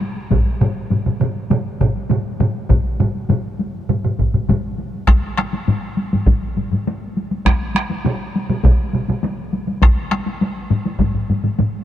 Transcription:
0.01 taiko high soft
0.16 taiko high soft
0.31 taiko loud
0.31 taiko low-mid medium
0.31 taiko mid medium
0.31 taiko high medium
0.46 taiko high soft
0.61 taiko low-mid medium
0.61 taiko mid medium
0.61 taiko high soft
0.75 taiko high soft
0.90 taiko low-mid medium
0.90 taiko mid medium
0.90 taiko high medium
1.06 taiko low-mid medium
1.06 taiko mid medium
1.06 taiko high soft
1.21 taiko low-mid medium
1.21 taiko mid medium
1.21 taiko high soft
1.36 taiko high soft
1.50 taiko low-mid medium
1.50 taiko mid loud
1.50 taiko high medium
1.80 taiko medium
1.80 taiko low-mid medium
1.80 taiko mid medium
1.80 taiko high soft
1.96 taiko high soft
2.10 taiko low-mid medium
2.10 taiko mid medium
2.10 taiko high medium
2.40 taiko low-mid medium
2.40 taiko mid medium
2.40 taiko high soft
2.55 taiko high soft
2.69 taiko medium
2.69 taiko low-mid medium
2.69 taiko mid medium
2.69 taiko high medium
2.85 taiko high soft
3.00 taiko low-mid medium
3.00 taiko mid medium
3.00 taiko high medium
3.15 taiko high soft
3.29 taiko low-mid loud
3.29 taiko mid medium
3.29 taiko high medium
3.59 taiko high medium
3.75 taiko high soft
3.89 taiko low-mid medium
3.89 taiko mid medium
3.89 taiko high medium
4.04 taiko low-mid medium
4.04 taiko mid medium
4.04 taiko high soft
4.19 taiko medium
4.19 taiko low-mid medium
4.19 taiko mid medium
4.19 taiko high soft
4.34 taiko low-mid medium
4.34 taiko mid medium
4.34 taiko high soft
4.49 taiko medium
4.49 taiko low-mid medium
4.49 taiko mid medium
4.49 taiko high medium
4.78 taiko high soft
4.94 taiko high soft
5.08 taiko rim medium
5.08 taiko loud
5.08 taiko high medium
5.38 taiko rim medium
5.38 taiko high medium
5.53 taiko high medium
5.68 taiko low-mid loud
5.68 taiko high medium
5.97 taiko high medium
6.13 taiko low-mid medium
6.13 taiko high medium
6.26 taiko loud
6.26 taiko low-mid loud
6.26 taiko high medium
6.57 taiko low-mid medium
6.57 taiko high medium
6.72 taiko low-mid medium
6.72 taiko high medium
6.87 taiko high medium
7.17 taiko high medium
7.31 taiko high medium
7.45 taiko rim medium
7.45 taiko loud
7.45 taiko high medium
7.75 taiko rim medium
7.75 taiko high medium
7.90 taiko high medium
8.05 taiko mid loud
8.05 taiko high medium
8.36 taiko high medium
8.50 taiko mid medium
8.50 taiko high medium
8.63 taiko loud
8.63 taiko mid loud
8.63 taiko high medium
8.93 taiko mid medium
8.93 taiko high medium
9.08 taiko mid medium
9.08 taiko high medium
9.23 taiko high medium
9.53 taiko high medium
9.67 taiko high medium
9.82 taiko rim medium
9.82 taiko loud
9.82 taiko high medium
10.11 taiko rim medium
10.11 taiko high medium
10.27 taiko high medium
10.41 taiko high medium
10.70 taiko low-mid medium
10.70 taiko high medium
10.86 taiko high medium
10.99 taiko loud
10.99 taiko low-mid medium
10.99 taiko high medium
11.14 taiko low-mid medium
11.30 taiko low-mid medium
11.30 taiko high medium
11.44 taiko low-mid medium
11.44 taiko high medium
11.59 taiko low-mid medium
11.59 taiko high medium

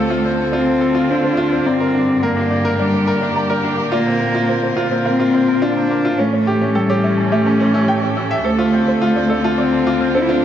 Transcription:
0.00 1.63 D2 medium
0.00 6.19 D3 medium
0.00 0.20 A3 medium
0.00 0.25 C4 medium
0.00 2.57 C4 medium
0.00 0.10 F4 medium
0.00 0.26 G4 medium
0.00 0.81 A4 medium
0.00 1.66 A4 medium
0.10 0.18 F4 medium
0.10 0.21 C5 medium
0.25 0.38 C4 medium
0.25 0.31 D5 medium
0.39 2.44 F4 medium
0.39 0.43 A5 medium
0.52 1.11 C4 medium
0.52 0.66 F4 medium
0.52 0.59 D5 medium
0.67 0.80 C4 medium
0.67 0.71 A5 medium
0.81 0.94 A4 medium
0.81 0.85 D6 medium
0.95 1.03 F4 medium
0.95 1.05 F6 medium
1.09 1.23 C4 medium
1.09 1.67 D4 medium
1.09 1.20 C5 medium
1.24 1.28 C5 medium
1.37 1.51 F4 medium
1.37 1.42 F5 medium
1.52 1.65 C4 medium
1.52 1.56 C5 medium
1.66 3.89 G2 medium
1.66 2.24 C4 medium
1.66 1.79 D5 medium
1.66 1.73 A#5 medium
1.80 1.88 A#4 medium
1.80 1.91 D5 medium
1.95 2.08 D4 medium
1.95 2.01 G5 medium
2.08 4.83 G4 medium
2.08 2.12 D6 medium
2.22 2.78 A#3 medium
2.22 2.36 A#4 medium
2.22 2.29 G5 medium
2.29 4.81 A#3 medium
2.37 2.50 D4 medium
2.37 2.41 D6 medium
2.51 2.64 D5 medium
2.51 2.55 G6 medium
2.65 2.73 A#4 medium
2.65 6.18 A#4 medium
2.65 2.75 G6 medium
2.79 3.31 G3 medium
2.79 2.93 D4 medium
2.79 2.89 D5 medium
2.94 2.97 D5 medium
3.07 3.21 A#4 medium
3.07 3.11 A#5 medium
3.21 3.35 D4 medium
3.21 3.25 D5 medium
3.36 3.49 D5 medium
3.36 3.42 A#5 medium
3.50 3.58 A#4 medium
3.50 3.60 D5 medium
3.64 3.77 D4 medium
3.64 3.71 G5 medium
3.77 3.82 D6 medium
3.92 6.16 A#2 medium
3.92 4.73 A#3 medium
3.92 4.05 F4 medium
3.92 3.99 D5 medium
4.06 4.20 C4 medium
4.06 4.10 A#5 medium
4.20 4.34 A#4 medium
4.20 4.25 D6 medium
4.34 6.19 C4 medium
4.34 4.43 F4 medium
4.34 4.45 F6 medium
4.49 4.62 C4 medium
4.49 4.59 C5 medium
4.63 4.67 C5 medium
4.68 6.19 F4 medium
4.76 4.90 F4 medium
4.76 4.81 F5 medium
4.91 5.05 C4 medium
4.91 4.95 C5 medium
5.05 5.64 C4 medium
5.05 5.19 A#4 medium
5.05 5.12 F5 medium
5.20 5.28 F4 medium
5.20 5.30 C5 medium
5.34 5.47 C4 medium
5.34 5.41 D5 medium
5.48 5.52 A#5 medium
5.62 6.21 D4 medium
5.62 5.75 F4 medium
5.62 5.69 D5 medium
5.76 5.90 C4 medium
5.76 5.80 A#5 medium
5.90 6.04 A#4 medium
5.90 5.94 D6 medium
6.04 6.13 F4 medium
6.04 6.15 F6 medium
6.18 8.43 A2 medium
6.18 8.45 E3 medium
6.18 6.78 A3 medium
6.18 6.32 C#4 medium
6.18 6.29 C#5 medium
6.33 6.37 C#5 medium
6.47 6.61 G4 medium
6.47 6.51 G5 medium
6.61 6.75 C#4 medium
6.61 6.65 C#5 medium
6.75 7.34 G3 medium
6.75 8.45 C#4 medium
6.75 6.89 A4 medium
6.75 6.82 G5 medium
6.90 6.98 G4 medium
6.90 7.00 C#5 medium
7.03 7.17 C#4 medium
7.03 9.36 G4 medium
7.03 7.10 E5 medium
7.18 10.45 A4 medium
7.18 7.22 A5 medium
7.32 7.89 A3 medium
7.32 7.45 G4 medium
7.32 7.39 E5 medium
7.46 7.59 C#4 medium
7.46 7.50 A5 medium
7.60 7.73 C#4 medium
7.60 7.64 C#5 medium
7.74 7.88 C#4 medium
7.74 7.79 E6 medium
7.88 8.02 G5 medium
7.88 7.95 G5 medium
8.03 8.10 C#5 medium
8.17 8.30 C#4 medium
8.17 8.24 E6 medium
8.31 8.44 E5 medium
8.31 8.35 E5 medium
8.44 10.45 D2 medium
8.44 10.45 D3 medium
8.44 9.26 A3 medium
8.44 8.58 A4 medium
8.44 8.55 C5 medium
8.59 8.67 F4 medium
8.59 8.63 C5 medium
8.73 8.87 C4 medium
8.73 8.78 F5 medium
8.88 8.92 C5 medium
9.02 9.15 F4 medium
9.02 9.09 F5 medium
9.08 10.45 C4 medium
9.16 9.29 C4 medium
9.16 9.23 D5 medium
9.27 10.45 F4 medium
9.27 9.43 A4 medium
9.27 9.37 D5 medium
9.44 9.52 F4 medium
9.44 9.48 A5 medium
9.58 9.72 C4 medium
9.58 10.11 C4 medium
9.58 9.65 D5 medium
9.72 9.77 A5 medium
9.86 10.00 F4 medium
9.86 9.91 D6 medium
10.01 10.14 C4 medium
10.01 10.11 F6 medium
10.15 10.23 D4 medium
10.15 10.28 A4 medium
10.15 10.25 C5 medium
10.22 10.32 E4 medium
10.29 10.45 D4 medium
10.29 10.37 F4 medium
10.29 10.33 C5 medium

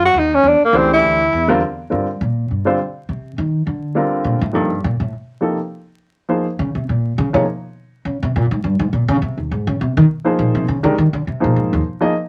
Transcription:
0.00 0.13 F#2 medium
0.05 0.20 F#4 loud
0.14 0.43 D#2 medium
0.19 0.36 D#4 loud
0.34 0.49 C#4 medium
0.43 0.60 E2 medium
0.48 0.63 D4 loud
0.61 0.79 A#3 medium
0.61 muted upright bass stroke soft
0.73 1.02 C#2 loud
0.73 1.16 E3 medium
0.73 1.17 A3 medium
0.73 1.17 D4 medium
0.73 1.17 G4 medium
0.73 1.17 C5 medium
0.78 0.93 C4 medium
0.93 1.52 E4 medium
1.03 1.31 D2 medium
1.33 1.61 E2 medium
1.48 1.59 D3 medium
1.48 1.60 G3 medium
1.48 1.60 C4 medium
1.48 1.60 F4 medium
1.48 1.60 A#4 medium
1.90 2.18 G2 medium
1.90 2.06 D3 soft
1.90 2.06 G3 soft
1.90 2.06 C4 soft
1.90 2.06 F4 soft
1.90 2.06 A#4 soft
2.21 2.47 A#2 medium
2.51 2.77 G2 medium
2.65 2.76 D3 medium
2.65 2.77 G3 medium
2.65 2.77 C4 medium
2.65 2.77 F4 medium
2.65 2.77 C5 medium
3.09 3.35 C3 medium
3.38 3.64 D#3 medium
3.67 3.93 D3 medium
3.95 4.38 D3 medium
3.95 4.38 G3 medium
3.95 4.38 C4 medium
3.95 4.39 F4 soft
3.95 4.39 A#4 medium
4.24 4.41 A#2 medium
4.41 4.55 A2 medium
4.53 4.83 G2 medium
4.53 4.69 C3 soft
4.53 4.69 F3 soft
4.53 4.69 A#3 soft
4.53 4.69 D#4 soft
4.53 4.69 A4 medium
4.84 4.99 A#2 medium
5.00 5.11 A2 medium
5.41 5.56 C3 soft
5.41 5.56 F3 soft
5.41 5.57 A#3 soft
5.41 5.57 D#4 soft
5.41 5.57 A4 medium
6.29 6.44 F3 medium
6.29 6.44 A#3 soft
6.29 6.44 D#4 soft
6.29 6.45 G#4 soft
6.29 6.45 C5 medium
6.59 6.74 C#3 medium
6.75 6.87 C3 medium
6.89 7.15 A#2 medium
7.18 7.33 C#3 medium
7.33 7.41 C3 medium
7.33 7.44 F3 medium
7.33 7.44 A#3 medium
7.33 7.45 D#4 medium
7.33 7.45 G#4 medium
7.33 7.44 C#5 medium
8.05 8.21 C#3 medium
8.23 8.33 C3 medium
8.36 8.50 A#2 medium
8.51 8.62 G#2 medium
8.64 8.79 G2 medium
8.79 8.91 G#2 medium
8.93 9.08 A#2 medium
9.08 9.20 C#3 loud
9.22 9.37 C3 medium
9.37 9.49 D#2 medium
9.51 9.66 G#2 medium
9.67 9.79 C#3 medium
9.81 9.96 C3 medium
9.97 10.04 D#3 loud
10.24 10.64 F3 medium
10.24 10.64 A#3 medium
10.24 10.64 D#4 medium
10.24 10.64 G#4 medium
10.24 10.64 C5 medium
10.39 10.54 A#2 medium
10.55 10.66 C3 medium
10.68 10.83 C#3 medium
10.83 10.95 D3 medium
10.83 10.94 D#3 medium
10.83 10.94 G#3 medium
10.83 10.94 D4 medium
10.83 10.95 G4 medium
10.83 10.95 A#4 medium
10.98 11.13 D#3 medium
11.13 11.25 D3 medium
11.27 11.43 C3 medium
11.40 11.55 A#2 medium
11.40 11.80 F3 medium
11.40 11.80 A#3 medium
11.40 11.80 D#4 medium
11.40 11.80 G#4 soft
11.40 11.81 C5 medium
11.56 11.72 G#2 medium
11.73 11.79 D#2 medium
12.00 12.11 F3 medium
12.00 12.11 A#3 medium
12.00 12.11 D#4 medium
12.00 12.12 G#4 medium
12.00 12.12 D#5 medium

